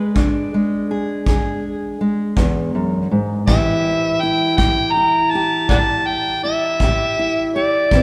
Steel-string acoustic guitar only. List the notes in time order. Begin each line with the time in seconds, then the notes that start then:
Already playing: G#3 G#4
0.15 E2 D4
0.54 G#3
0.91 G#4
1.27 E2 G#4
2.01 G#3
2.36 E2
2.75 F#2
3.11 G#2
3.48 A2 E3 E4 G4
4.23 E4
4.58 A2 G4
4.97 E4
5.35 G4
5.70 A2 G4
6.45 E4
6.83 A2 G4
7.19 E4
7.56 G4
7.92 A2 E3 C4 E4 G4